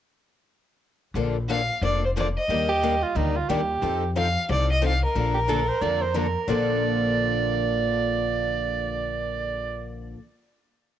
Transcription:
1.14 upright bass A#1, steel-string acoustic guitar D3 F3 A#3 D4 A4
1.49 steel-string acoustic guitar D3 F3 A#3 D4 A4, violin F5
1.82 upright bass F1, steel-string acoustic guitar D3 F3 A#3 D4 A4, violin D5
2.05 violin C5
2.17 steel-string acoustic guitar D3 F3 A#3 D4 A4, violin D5
2.38 violin D#5
2.48 upright bass D#2, steel-string acoustic guitar D#3 G3 A#3 D4 G4
2.69 soprano saxophone G4
2.83 steel-string acoustic guitar D#3 G3 A#3 D4 G4
3.02 soprano saxophone F4
3.15 upright bass D2, steel-string acoustic guitar D#3 G3 A#3 D4 G4, soprano saxophone D#4
3.36 soprano saxophone F4
3.49 upright bass D#2, steel-string acoustic guitar D#3 G3 A#3 D4 G4, soprano saxophone G4
3.82 upright bass F2, steel-string acoustic guitar F3 C4 D#4 A4
4.16 steel-string acoustic guitar F3 C4 D#4 A4, violin F5
4.49 upright bass C2, steel-string acoustic guitar F3 C4 D#4 A4, violin D5
4.72 violin D#5
4.82 steel-string acoustic guitar F3 C4 D#4 A4
4.87 violin F5
5.05 violin A#4
5.15 upright bass A#1, steel-string acoustic guitar D3 F3 A#3 D4 A4
5.34 soprano saxophone G4
5.48 steel-string acoustic guitar D3 F3 A#3 D4 A4, soprano saxophone A4
5.68 soprano saxophone C5
5.81 upright bass F2, steel-string acoustic guitar D3 F3 A#3 D4 A4, soprano saxophone D5
6.01 soprano saxophone C5
6.14 steel-string acoustic guitar D3 F3 A#3 D4 A4, soprano saxophone A#4
6.48 upright bass A#1, steel-string acoustic guitar A#2 D3 F3 A#3 D4 A4, soprano saxophone D5

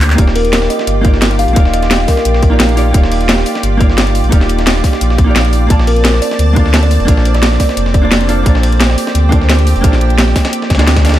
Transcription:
Already playing: sub bass D2, hollow-body jazz guitar A#3 D4 F4 A4 D5, analog synth pad C4 G4 D5
0.01 clap, closed hi-hat, open hi-hat
0.10 snare, clap
0.15 sub bass D#1, hollow-body jazz guitar A#3 D#4 F4, analog synth pad F4 D5, kick, closed hi-hat
0.20 hollow-body jazz guitar G4 D5
0.27 snare
0.36 kalimba A#4, closed hi-hat, open hi-hat
0.45 closed hi-hat
0.53 snare, closed hi-hat
0.62 snare
0.70 kalimba D#5, closed hi-hat, open hi-hat
0.79 snare
0.87 sub bass G1, closed hi-hat
1.01 hollow-body jazz guitar A#3 D#4 F4, kick, closed hi-hat
1.06 hollow-body jazz guitar G4 D5
1.14 snare
1.22 snare, closed hi-hat
1.31 closed hi-hat
1.39 kalimba F5, closed hi-hat, open hi-hat
1.48 sub bass A#1, closed hi-hat
1.53 sub bass D#1, hollow-body jazz guitar A#3 D#4 F4, kick, closed hi-hat
1.58 hollow-body jazz guitar G4 D5
1.65 snare
1.74 kalimba D#5, closed hi-hat
1.83 snare, closed hi-hat
1.91 snare, closed hi-hat
2.00 snare
2.08 kalimba A#4, kick, snare, closed hi-hat, open hi-hat
2.17 snare
2.25 sub bass A#1, closed hi-hat
2.34 snare
2.43 kick, closed hi-hat
2.50 hollow-body jazz guitar A#3 D#4 F4 G4 D5
2.60 sub bass A#1, snare, closed hi-hat
2.69 closed hi-hat
2.75 hollow-body jazz guitar A#3 D#4 F4 G4 D5, closed hi-hat, open hi-hat
2.91 sub bass D#1, hollow-body jazz guitar A#3 D#4 F4, kick, closed hi-hat
2.96 hollow-body jazz guitar G4 D5
3.04 snare
3.12 closed hi-hat, open hi-hat
3.21 closed hi-hat
3.29 snare, closed hi-hat
3.38 snare
3.46 closed hi-hat, open hi-hat
3.55 snare
3.63 sub bass G1, closed hi-hat
3.77 hollow-body jazz guitar A#3 D#4 F4, kick, closed hi-hat
3.82 hollow-body jazz guitar G4 D5
3.90 snare
3.98 snare, closed hi-hat
4.07 closed hi-hat
4.15 closed hi-hat, open hi-hat
4.24 sub bass A#1, closed hi-hat
4.29 sub bass D#1, hollow-body jazz guitar A#3 D#4 F4, kick, closed hi-hat
4.34 hollow-body jazz guitar G4 D5
4.41 snare
4.49 closed hi-hat
4.58 snare, closed hi-hat
4.67 snare, closed hi-hat
4.76 snare
4.84 kick, snare, closed hi-hat, open hi-hat
4.93 snare
5.01 sub bass A#1, closed hi-hat
5.10 snare
5.18 kick, closed hi-hat
5.24 hollow-body jazz guitar A#3 D#4 F4
5.29 hollow-body jazz guitar G4 D5
5.36 sub bass A#1, snare, closed hi-hat
5.45 closed hi-hat
5.53 closed hi-hat, open hi-hat
5.67 sub bass A#1, hollow-body jazz guitar A#3 F4, analog synth pad C4 A5, kick, closed hi-hat
5.71 hollow-body jazz guitar D5 A5
5.79 snare
5.87 kalimba A#4, closed hi-hat, open hi-hat
5.96 closed hi-hat
6.05 snare, closed hi-hat
6.14 snare
6.22 kalimba D5, closed hi-hat, open hi-hat
6.31 snare
6.39 sub bass D2, closed hi-hat
6.53 hollow-body jazz guitar A#3 D4 F4, kick, closed hi-hat
6.58 hollow-body jazz guitar A4 D5
6.66 snare
6.74 snare, closed hi-hat
6.83 kalimba D5, closed hi-hat
6.91 closed hi-hat, open hi-hat
7.00 sub bass F1, closed hi-hat
7.05 sub bass A#1, hollow-body jazz guitar A#3 D4 F4, kick, closed hi-hat
7.10 hollow-body jazz guitar A4 D5
7.17 snare
7.25 closed hi-hat
7.34 kalimba D5, snare, closed hi-hat
7.43 snare, closed hi-hat
7.52 snare
7.60 kalimba D5, kick, snare, closed hi-hat, open hi-hat
7.69 snare
7.77 sub bass F1, closed hi-hat
7.86 snare
7.94 kalimba D5, kick, closed hi-hat
8.02 hollow-body jazz guitar A#3 D4 F4 A4 D5
8.12 sub bass F1, snare, closed hi-hat
8.21 closed hi-hat
8.27 hollow-body jazz guitar A#3 D4 F4 A4 D5, closed hi-hat, open hi-hat
8.43 sub bass A#1, hollow-body jazz guitar A#3 D4 F4, analog synth pad G4, kick, closed hi-hat
8.48 hollow-body jazz guitar A4 D5
8.55 snare
8.63 closed hi-hat, open hi-hat
8.72 closed hi-hat
8.81 snare, closed hi-hat
8.90 snare
8.98 closed hi-hat, open hi-hat
9.07 snare
9.15 sub bass D2, closed hi-hat
9.29 hollow-body jazz guitar A#3 D4 F4, kick, closed hi-hat
9.34 hollow-body jazz guitar A4 D5
9.41 snare
9.49 snare, closed hi-hat
9.59 closed hi-hat
9.67 closed hi-hat, open hi-hat
9.76 sub bass F1, closed hi-hat
9.81 sub bass A#1, hollow-body jazz guitar A#3 D4 F4, kick, closed hi-hat
9.86 hollow-body jazz guitar A4 D5
9.93 snare
10.01 closed hi-hat
10.10 closed hi-hat
10.18 snare, closed hi-hat
10.28 snare
10.36 kick, snare, closed hi-hat, open hi-hat
10.45 snare, closed hi-hat
10.53 closed hi-hat
10.62 snare
10.70 sub bass D2, kick, snare, closed hi-hat
10.75 hollow-body jazz guitar A#3 D4, snare, closed hi-hat
10.79 hollow-body jazz guitar F4 A4 D5, snare, closed hi-hat
10.87 snare, closed hi-hat
10.96 kick, snare, closed hi-hat
11.03 hollow-body jazz guitar A#3 D4 F4 A4 D5, snare, closed hi-hat, open hi-hat
11.09 snare, closed hi-hat
11.14 snare, closed hi-hat

